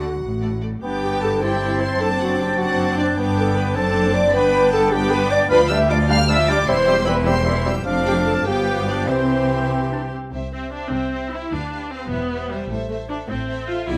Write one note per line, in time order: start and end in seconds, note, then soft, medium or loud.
0.00 0.11 D2 soft
0.00 0.12 D3 soft
0.00 0.08 A3 soft
0.00 0.60 F#4 medium
0.00 0.08 A4 soft
0.00 0.07 D5 soft
0.00 0.51 F#5 medium
0.22 0.73 A1 soft
0.22 0.73 A2 soft
0.41 0.49 A3 soft
0.41 0.49 A4 soft
0.41 0.48 D5 soft
0.62 0.69 A3 soft
0.62 0.70 A4 soft
0.62 0.68 D5 soft
0.83 1.97 G1 medium
0.83 1.97 G2 medium
0.83 1.44 B3 medium
0.83 1.39 B3 soft
0.83 1.44 D4 medium
0.83 1.38 G4 soft
0.83 1.39 G5 medium
0.83 1.44 G5 medium
0.83 1.39 D6 medium
1.03 1.21 G4 medium
1.03 1.22 G4 medium
1.03 1.21 G5 medium
1.22 1.28 A4 medium
1.22 1.43 A4 medium
1.22 1.42 A5 medium
1.41 3.17 C4 medium
1.41 2.00 C4 medium
1.41 2.02 E4 medium
1.41 2.01 E4 medium
1.41 1.82 G4 medium
1.41 1.81 G5 medium
1.41 2.00 A5 medium
1.41 3.19 A5 soft
1.41 2.01 C6 medium
1.80 2.00 C5 medium
1.80 2.01 C5 medium
1.80 2.01 C6 medium
2.00 3.18 F#1 medium
2.00 3.18 F#2 medium
2.00 2.58 C4 medium
2.00 4.34 D4 medium
2.00 2.59 D4 medium
2.00 2.09 A4 medium
2.00 2.08 A4 medium
2.00 2.58 A5 medium
2.00 2.21 A5 medium
2.00 2.58 D6 medium
2.20 2.38 F#4 medium
2.20 2.40 F#4 medium
2.20 2.40 F#5 medium
2.39 2.59 G4 medium
2.39 2.59 G5 medium
2.57 3.17 C4 medium
2.57 3.17 D4 medium
2.57 2.97 F#4 medium
2.57 2.98 F#4 medium
2.57 2.98 F#5 medium
2.57 3.17 A5 medium
2.57 3.17 D6 medium
2.98 3.17 D4 medium
2.98 3.18 D4 medium
2.98 3.06 D5 medium
3.17 3.75 G1 medium
3.17 3.75 G2 medium
3.17 3.77 B3 medium
3.17 3.75 B3 medium
3.17 3.74 D4 medium
3.17 3.78 G5 medium
3.17 3.75 G5 medium
3.17 3.75 D6 medium
3.37 3.55 A4 medium
3.37 3.42 B4 medium
3.37 3.45 A5 medium
3.41 3.59 A4 medium
3.57 3.76 B4 medium
3.57 3.77 B4 medium
3.57 3.64 B5 medium
3.75 4.34 F#1 medium
3.75 4.34 F#2 medium
3.75 4.33 C4 medium
3.75 4.34 C4 medium
3.75 4.33 D4 medium
3.75 4.14 A4 medium
3.75 4.15 A4 medium
3.75 4.34 A5 medium
3.75 4.14 A5 medium
3.75 4.35 A5 medium
3.75 4.33 D6 medium
4.14 4.34 D5 medium
4.14 4.34 D6 medium
4.33 5.50 G1 medium
4.33 5.50 G2 medium
4.33 4.91 B3 medium
4.33 5.48 B3 medium
4.33 4.91 D4 medium
4.33 5.48 D4 medium
4.33 4.72 B4 loud
4.33 4.72 B4 medium
4.33 5.48 G5 medium
4.33 4.92 G5 medium
4.33 4.72 B5 medium
4.33 4.91 D6 medium
4.72 4.94 A4 medium
4.72 4.92 A4 loud
4.72 4.92 A5 medium
4.92 5.49 B3 medium
4.92 5.49 D4 medium
4.92 5.12 G4 medium
4.92 5.13 G4 medium
4.92 5.11 G5 medium
4.92 5.50 G5 medium
4.92 5.50 D6 medium
5.11 5.33 B4 medium
5.11 5.31 B4 loud
5.11 5.31 B5 medium
5.31 5.49 D5 medium
5.31 5.40 D5 loud
5.31 5.38 D6 medium
5.49 6.64 D2 medium
5.49 5.68 F3 medium
5.49 5.60 G3 medium
5.49 5.60 D4 medium
5.49 5.68 F4 medium
5.49 5.56 B4 medium
5.49 5.60 B4 loud
5.49 5.58 F5 medium
5.49 5.69 F5 medium
5.49 5.69 B5 medium
5.49 5.69 D6 medium
5.69 5.89 G3 medium
5.69 5.79 G3 medium
5.69 5.79 D4 medium
5.69 5.89 G4 medium
5.69 5.90 E5 loud
5.69 5.77 E5 medium
5.69 5.78 F5 medium
5.69 5.90 G5 medium
5.69 5.90 B5 medium
5.69 5.77 E6 medium
5.89 6.09 F3 medium
5.89 5.99 G3 medium
5.89 5.98 D4 medium
5.89 6.09 F4 medium
5.89 6.09 D5 medium
5.89 6.10 D5 medium
5.89 5.98 F5 medium
5.89 6.09 F5 medium
5.89 5.97 D6 medium
5.89 6.09 D6 medium
6.08 6.29 G3 medium
6.08 6.18 G3 medium
6.08 6.17 D4 medium
6.08 6.29 G4 medium
6.08 6.18 F5 medium
6.08 6.19 F5 loud
6.08 6.16 F5 medium
6.08 6.29 G5 medium
6.08 6.29 B5 medium
6.08 6.28 F6 loud
6.28 6.46 F3 medium
6.28 6.38 G3 medium
6.28 6.38 D4 medium
6.28 6.47 F4 medium
6.28 6.50 E5 medium
6.28 6.49 E5 loud
6.28 6.37 F5 medium
6.28 6.48 F5 medium
6.28 6.48 D6 medium
6.28 6.48 E6 medium
6.48 6.67 G3 medium
6.48 6.57 G3 medium
6.48 6.57 D4 medium
6.48 6.68 G4 medium
6.48 6.70 D5 medium
6.48 6.59 D5 loud
6.48 6.58 F5 medium
6.48 6.67 G5 medium
6.48 6.68 B5 medium
6.48 6.68 D6 medium
6.67 7.86 E1 medium
6.67 7.86 E2 medium
6.67 6.86 E3 medium
6.67 6.77 G3 medium
6.67 6.77 C4 medium
6.67 6.86 E4 medium
6.67 7.06 C5 loud
6.67 7.06 C5 medium
6.67 6.86 E5 medium
6.67 6.77 E5 medium
6.67 7.06 C6 medium
6.67 6.86 C6 medium
6.87 6.96 G3 medium
6.87 7.07 G3 medium
6.87 6.96 C4 medium
6.87 7.07 G4 medium
6.87 6.96 E5 medium
6.87 7.07 G5 medium
6.87 7.07 E6 medium
7.06 7.26 E3 medium
7.06 7.16 G3 medium
7.06 7.15 C4 medium
7.06 7.26 E4 medium
7.06 7.29 B4 medium
7.06 7.16 B4 medium
7.06 7.15 E5 medium
7.06 7.26 E5 medium
7.06 7.14 B5 medium
7.06 7.26 C6 medium
7.25 7.35 G3 medium
7.25 7.46 G3 medium
7.25 7.35 C4 medium
7.25 7.46 G4 medium
7.25 7.65 C5 medium
7.25 7.66 C5 medium
7.25 7.35 E5 medium
7.25 7.45 G5 medium
7.25 7.65 C6 medium
7.25 7.46 E6 medium
7.45 7.65 E3 medium
7.45 7.55 G3 medium
7.45 7.55 C4 medium
7.45 7.65 E4 medium
7.45 7.54 E5 medium
7.45 7.64 E5 medium
7.45 7.64 C6 medium
7.65 7.75 G3 medium
7.65 7.86 G3 medium
7.65 7.75 C4 medium
7.65 7.86 G4 medium
7.65 7.74 E5 medium
7.65 7.86 G5 medium
7.65 7.86 E6 medium
7.85 8.43 F1 medium
7.85 8.43 F2 medium
7.85 8.42 F3 medium
7.85 8.42 A3 medium
7.85 8.43 D4 medium
7.85 8.49 D4 medium
7.85 8.42 F5 medium
7.85 8.42 D6 medium
8.06 8.15 G4 medium
8.06 8.13 G4 medium
8.06 8.14 G5 medium
8.26 8.46 A4 medium
8.26 8.33 A4 medium
8.26 8.46 A5 medium
8.46 9.08 G1 medium
8.46 9.08 G2 medium
8.46 9.10 F3 medium
8.46 9.08 B3 medium
8.46 9.10 B3 medium
8.46 8.86 G4 medium
8.46 9.07 G4 medium
8.46 8.88 G4 medium
8.46 9.07 F5 medium
8.46 9.07 G5 medium
8.46 8.87 G5 medium
8.46 9.07 D6 medium
8.87 9.08 D4 medium
8.87 9.10 D4 medium
8.87 9.08 D5 medium
9.07 10.12 C2 medium
9.07 10.12 C3 medium
9.07 10.12 E3 medium
9.07 9.69 C4 medium
9.07 10.12 C4 medium
9.07 9.67 C4 medium
9.07 10.10 G4 medium
9.07 9.70 C5 medium
9.07 9.71 C5 medium
9.07 10.13 E5 medium
9.07 10.10 G5 medium
9.07 10.13 C6 medium
9.71 9.81 C4 medium
9.92 10.01 D4 medium
10.13 10.32 C4 medium
10.33 10.83 C2 soft
10.33 10.83 C3 soft
10.33 10.52 G4 soft
10.33 10.53 C5 soft
10.33 10.52 E5 soft
10.53 10.71 C4 medium
10.53 10.73 G4 soft
10.53 10.73 C5 soft
10.53 10.72 E5 soft
10.73 10.92 D4 medium
10.73 10.93 G4 soft
10.73 10.93 C5 soft
10.73 10.92 E5 soft
10.92 11.43 C2 medium
10.92 11.42 C3 medium
10.92 11.32 C4 medium
10.92 11.12 G4 soft
10.92 11.12 C5 soft
10.92 11.12 E5 soft
11.13 11.31 G4 soft
11.13 11.32 C5 soft
11.13 11.32 E5 soft
11.31 11.52 E4 medium
11.31 11.52 G4 soft
11.31 11.52 C5 soft
11.31 11.52 E5 soft
11.52 12.02 D2 medium
11.52 11.92 D4 medium
11.52 11.71 G4 soft
11.52 11.71 B4 soft
11.52 11.71 F5 soft
11.72 11.92 G4 soft
11.72 11.91 B4 soft
11.72 11.90 F5 soft
11.91 12.11 C4 medium
11.91 12.11 G4 soft
11.91 12.11 B4 soft
11.91 12.11 F5 soft
12.11 12.61 E1 medium
12.11 12.61 E2 medium
12.11 12.50 B3 medium
12.11 12.31 G4 soft
12.11 12.31 C5 soft
12.11 12.29 E5 soft
12.30 12.50 G4 soft
12.30 12.50 C5 soft
12.30 12.50 E5 soft
12.49 12.70 G3 medium
12.49 12.70 G4 soft
12.49 12.70 C5 soft
12.49 12.70 E5 soft
12.70 13.19 A1 medium
12.70 13.20 A2 medium
12.70 12.90 A4 soft
12.70 12.90 C5 soft
12.70 12.89 E5 medium
12.89 12.97 A3 medium
12.89 13.09 A4 soft
12.89 13.09 C5 soft
12.89 13.09 E5 soft
13.09 13.17 D4 medium
13.09 13.28 A4 soft
13.09 13.29 C5 soft
13.09 13.28 E5 soft
13.29 13.78 A1 medium
13.29 13.78 A2 medium
13.29 13.67 C4 medium
13.29 13.48 A4 soft
13.29 13.47 C5 medium
13.29 13.47 E5 soft
13.48 13.68 A4 medium
13.48 13.67 C5 medium
13.48 13.67 E5 soft
13.68 13.88 F4 medium
13.68 13.88 A4 medium
13.68 13.88 C5 soft
13.68 13.86 E5 soft
13.87 13.98 B1 medium
13.87 13.98 B2 medium
13.87 13.98 E4 medium
13.87 13.98 G#4 medium
13.87 13.98 D5 medium
13.87 13.98 E5 soft